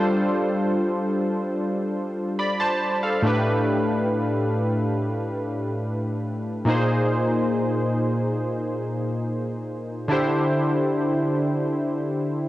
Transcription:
Already playing: G3 D4 F4 A4 C5
2.39 D5 B5
2.60 C5 A5
3.03 A4 F5
3.22 A2 A3 D4 G4
3.27 B4
6.65 A#2 A#3 D#4 G#4
6.70 C5
10.08 D3 D4 E4 G4
10.12 C5

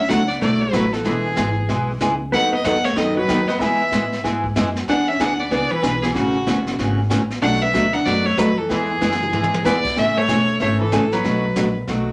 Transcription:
Already playing: C#4 E5
0.08 C#2 D3 F#3 A3 D4 E4 F#4 F#5, kick, snare, hi-hat pedal
0.28 B3 D5, snare
0.41 B1 D3 F#3 A3 E4 F#4 D5, brush sweep, kick, snare
0.61 F#3 B4
0.73 A1 D3 F#3 A3 E4 F#4, kick, snare, hi-hat pedal
0.93 E3 A4, snare
1.04 E1 E3 G#3 B3 E4 G#4, brush sweep, kick, snare
1.36 G#1 E3 G#3 B3 E4 G#4, kick, snare, hi-hat pedal
1.69 B1 E3 G#3 B3 E4 G#4, brush sweep, kick, snare
2.01 C#2 E3 G#3 B3 E4 G#4, kick, snare, hi-hat pedal
2.32 D#2 D#3 F#3 B3 D#4 A4 F#5, brush sweep, kick, snare
2.52 B3 D#5
2.64 E2 D#3 F#3 B3 D#4 A4 F#5, kick, snare, hi-hat pedal
2.84 A3 C#5, snare
2.96 F#2 D#3 F#3 B3 D#4 A4 D#5, brush sweep, kick, snare
3.16 F#3 B4
3.28 D#2 D#3 F#3 B3 D#4 A4, kick, snare, hi-hat pedal
3.48 B3 D#5, snare
3.59 E2 E3 G#3 B3 E4 G#4 E5, brush sweep, kick, snare
3.92 A2 E3 G#3 B3 E4 G#4, kick, snare, hi-hat pedal
4.12 snare
4.23 G#2 E3 G#3 B3 E4 G#4, brush sweep, kick, snare
4.44 kick
4.56 F#2 E3 G#3 B3 E4 G#4, snare, hi-hat pedal
4.76 snare
4.88 E2 E3 B3 D4 G#4 F#5, brush sweep, kick, snare
5.08 C#4 E5
5.19 D2 E3 B3 D4 G#4 F#5, kick, snare, hi-hat pedal
5.40 B3 D5
5.51 C#2 E3 B3 D4 G#4 D5, brush sweep, kick, snare
5.71 E3 B4, muted upright bass stroke
5.82 B1 E3 B3 D4 G#4, kick, snare, hi-hat pedal
6.02 E3 G#4, snare
6.14 A1 C#3 E3 A3 C#4 F#4, brush sweep, kick, snare
6.46 F#1 C#3 E3 A3 C#4 F#4, kick, snare, hi-hat pedal
6.67 snare
6.78 G#1 C#3 E3 A3 C#4 F#4, brush sweep, kick, snare
7.10 A1 C#3 E3 A3 C#4 F#4, kick, snare, hi-hat pedal
7.30 snare
7.42 B1 B2 F#3 A3 D4 F#4 F#5, brush sweep, kick, snare
7.62 B3 E5
7.73 D2 B2 F#3 A3 D4 F#4, kick, snare, hi-hat pedal
7.93 D4 F#5
8.05 F#2 B2 F#3 A3 B3 D4 F#4 D5, brush sweep, kick, snare
8.26 A3 C#5
8.37 F2 B2 F#3 A3 D4 F#4 B4, kick, snare, hi-hat pedal
8.58 E3 A4
8.69 E2 E3 G#3 B3 E4 G#4, brush sweep, kick, snare
9.01 F#2 E3 G#3 B3 E4 G#4, snare, hi-hat pedal
9.12 snare
9.22 mid tom
9.32 G#2 E3 G#3 B3 E4 G#4, high tom
9.43 high tom
9.54 high tom
9.64 E2 E3 G#3 B3 E4 G#4 D5, snare, hi-hat pedal
9.85 kick, crash
9.96 A1 C#3 E3 A3 C#4 G#4 E5, brush sweep, snare
10.17 A3 C#5
10.27 E1 C#3 E3 A3 C#4 G#4, kick, snare, hi-hat pedal
10.60 G#1 C#3 E3 A3 C#4 G#4 C#5, brush sweep, kick, snare
10.80 E3 A4
10.92 A1 C#3 E3 A3 C#4 G#4, kick, snare, hi-hat pedal
11.12 F#3 B4, snare
11.24 B1 B2 F#3 A3 D4 F#4, brush sweep, kick, snare
11.56 A#1 B2 F#3 A3 D4 F#4, kick, snare, hi-hat pedal
11.87 B1 B2 F#3 A3 D4 F#4, brush sweep, kick, snare

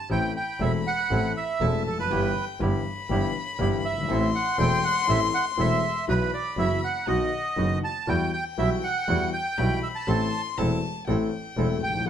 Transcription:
0.10 A1 A2 E3 A3 C4 E4 A4 G5 B5
0.36 G5
0.60 E1 E2 E3 A3 C4 E4 A4 E5
0.87 F#5
1.10 A1 A2 E3 A3 C4 E4 A4
1.37 E5
1.60 E1 E2 E3 A3 C4 E4 A4 A5
1.86 F1 A4
1.92 E2
1.98 F2 B4
2.04 F#2
2.10 G1 G2 E3 G3 B3 E4 G4 G5
2.59 G1 G2 E3 G3 B3 E4 G4 B5
3.09 G1 G2 E3 G3 B3 E4 G4
3.59 G1 G2 E3 G3 B3 E4 G4
3.85 G1 E5
3.91 F#1
3.97 G1
4.03 G#1
4.08 A1 A2 E3 A3 C4 E4 A4 C6
4.35 F#5
4.58 E1 E2 E3 A3 C4 E4 A4 G5
4.84 F#5
5.07 A1 A2 E3 A3 C4 E4 A4 E5
5.34 F#5
5.57 E1 E2 E3 A3 C4 E4 A4 E5
6.07 B1 B2 E3 F#3 B3 E4 F#4 B4 B5
6.34 D5
6.57 F#1 F#2 E3 F#3 B3 E4 F#4 E5
6.84 F#5
7.07 B1 B2 D#3 F#3 B3 D#4 F#4 D#5 F#5
7.57 F#1 F#2 D#3 F#3 B3 D#4 F#4
7.84 A5
8.07 E2 E3 G3 B3 E4 F#4 G5
8.33 G5
8.58 B1 B2 E3 G3 B3 E4 F#4 E5
8.84 F#5
9.08 E2 E3 G3 B3 E4 F#4
9.33 G5
9.58 B1 B2 E3 G3 B3 E4 F#4 B5
9.83 E5
9.95 A5
10.07 A1 A2 E3 A3 C4 E4 A4 C6
10.57 E1 E2 E3 A3 C4 E4 A4 A5
11.07 A1 A2 E3 A3 C4 E4 A4 G5
11.57 E1 E2 E3 A3 C4 E4 A4
11.82 A1 G5
11.89 G#1
11.94 A1
12.01 A#1
12.06 B1 B2 E3 A3 B3 F#4 F#5

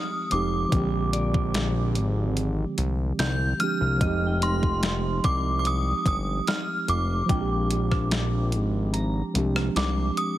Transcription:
Already playing: F3 G#3 C4 D#4 G4 D#5 D#6
0.30 F1 F3 G#3 C4 D#4 D6, closed hi-hat
0.35 G4
0.69 A#1 F3 G#3, kick, closed hi-hat
0.73 D3 C4
0.77 G4
1.13 D5, closed hi-hat
1.34 kick
1.54 snare, closed hi-hat
1.95 G#1, closed hi-hat
2.37 closed hi-hat
2.78 C2, closed hi-hat
3.19 C2 G6, snare, closed hi-hat
3.59 F3 G#3 C4 D4 F6, closed hi-hat
3.63 G4
3.81 C2
3.97 F1 F3 G#3 D#5, kick, closed hi-hat
4.02 C4 D#4
4.07 G4
4.27 G5
4.42 C6, closed hi-hat
4.63 kick
4.83 snare, closed hi-hat
5.24 C2 D6, kick, closed hi-hat
5.59 D6
5.65 D#6, closed hi-hat
6.06 G1 D#6, kick, closed hi-hat
6.47 F6, snare, closed hi-hat
6.88 F1 D6, closed hi-hat
7.26 A#1 F3 G#3 G5, kick, closed hi-hat
7.30 C4 D4
7.35 F4
7.41 G4
7.71 closed hi-hat
7.92 kick, cross-stick
8.11 snare, closed hi-hat
8.52 G#1, closed hi-hat
8.93 A#5, closed hi-hat
9.34 C2 F3 G#3 C4 D4, closed hi-hat
9.38 G4
9.56 cross-stick
9.76 C2 D6, snare, closed hi-hat
10.17 D#6, closed hi-hat

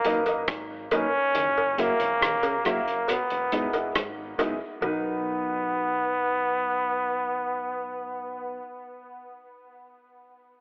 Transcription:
Already playing: A#3
0.05 F#1 F#3 A#3 D#4 A#4 B4 D#5, closed hi-hat
0.26 A#4 B4 D#5, closed hi-hat, cowbell
0.48 G#1, kick, cross-stick, closed hi-hat
0.91 F#3 A#3 C#4 D#4 A#4 B4 D#5, closed hi-hat, cowbell
1.35 F#1 D#3, closed hi-hat
1.58 cowbell
1.78 C#3 F#3 A#3 E4 F#4 A#4 E5, closed hi-hat
1.82 A#3
2.00 G#1 E3, closed hi-hat
2.21 A#1 D#3, cross-stick, closed hi-hat
2.43 C#3, closed hi-hat, cowbell
2.65 F#1 C#3 F#3 A#3 E4 F#4 A#4 E5, cross-stick, closed hi-hat
2.86 A#4 E5, muted clean electric guitar stroke, closed hi-hat
3.08 B2 B3, closed hi-hat, cowbell
3.30 E1, closed hi-hat
3.52 E1 G#2 G#3 B3 D#4 E4 G#4 D#5, closed hi-hat
3.73 E4 G#4 D#5, closed hi-hat, cowbell
3.95 G#1 G#2, cross-stick, closed hi-hat
4.38 F#1 B2 G#3 B3 D#4 E4 G#4 D#5, closed hi-hat, cowbell
4.81 B1 B2 F#3 B3 D#4 A#4 B4, cowbell
4.86 D#4

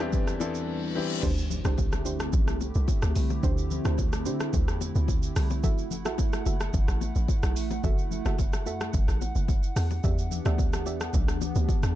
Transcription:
Already playing: E2 E3 G3 D4 D#4 B4
0.00 E3 B3 C4 D4 E4 G4, cross-stick, shaker
0.13 kick, reverse cymbal, low conga, shaker
0.27 cross-stick, shaker
0.40 E3 B3 C4 D4 E4 A4, high bongo, low bongo, shaker
0.55 shaker
0.95 E3 B3 C4 D4 E4 G4
1.23 D2 D3 A3 C4 D4 E4 G4 C5, kick, crash, impact, low conga, shaker
1.38 shaker
1.50 low conga, shaker
1.65 C2 D4 G4 C5, cross-stick, low bongo, shaker
1.78 kick, high bongo, shaker
1.92 cross-stick, low bongo, shaker
2.05 D2 D4 G4 C5, high bongo, shaker
2.20 cross-stick, shaker
2.33 A1, kick, low conga, shaker
2.48 C2, cross-stick, shaker
2.61 high bongo, low bongo, shaker
2.75 C2, shaker
2.88 kick, high bongo, shaker
3.02 D2, cross-stick, shaker
3.16 C2, open hi-hat, shaker
3.30 low bongo, shaker
3.43 D2 D4 G4 C5, kick, low conga, shaker
3.58 shaker
3.71 low conga, shaker
3.85 D2 D4 G4 C5, cross-stick, low bongo, shaker
3.98 kick, high bongo, shaker
4.13 cross-stick, low bongo, shaker
4.26 D3 D4 G4 C5, high bongo, shaker
4.40 cross-stick, shaker
4.53 D2, kick, low conga, shaker
4.68 E2, cross-stick, shaker
4.81 high bongo, low bongo, shaker
4.95 D2, shaker
5.08 kick, high bongo, shaker
5.23 shaker
5.36 C2, cross-stick, open hi-hat, shaker
5.50 low bongo, shaker
5.63 F#1 A3 F#4 A4 E5 F#5, kick, low conga, shaker
5.78 shaker
5.91 low conga, shaker
6.05 A1 F#4 A4 E5, cross-stick, low bongo, shaker
6.18 kick, high bongo, shaker
6.33 cross-stick, low bongo, shaker
6.46 F#1 F#4 A4 E5, high bongo, shaker
6.60 cross-stick, shaker
6.73 F#1, kick, low conga, shaker
6.88 A1, cross-stick, shaker
7.01 high bongo, low bongo, shaker
7.15 A1, shaker
7.28 kick, high bongo, shaker
7.43 B1, cross-stick, shaker
7.56 A1, open hi-hat, shaker
7.71 low bongo, shaker
7.84 F#1 F#4 A4 E5, kick, low conga, shaker
7.99 shaker
8.11 low conga, shaker
8.26 F#1 F#4 A4 E5, cross-stick, low bongo, shaker
8.39 kick, high bongo, shaker
8.53 cross-stick, low bongo, shaker
8.66 F#2 F#4 A4 E5, high bongo, shaker
8.81 cross-stick, shaker
8.93 F#1, kick, low conga, shaker
9.08 A1, cross-stick, shaker
9.21 high bongo, low bongo, shaker
9.35 F#1, shaker
9.48 kick, high bongo, shaker
9.63 shaker
9.76 E2 E3 B3 D4 G4, cross-stick, open hi-hat, shaker
9.90 low bongo, shaker
10.04 E2 G4 D5 E5, kick, low conga, shaker
10.18 shaker
10.31 low conga, shaker
10.45 D2 G4 D5 E5, cross-stick, low bongo, shaker
10.58 kick, high bongo, shaker
10.73 cross-stick, low bongo, shaker
10.86 E2 G4 D5 E5, high bongo, shaker
11.01 cross-stick, shaker
11.13 B1, kick, low conga, shaker
11.28 D2, cross-stick, shaker
11.41 high bongo, low bongo, shaker
11.55 D2, shaker
11.68 kick, high bongo, shaker
11.83 E2, cross-stick, shaker

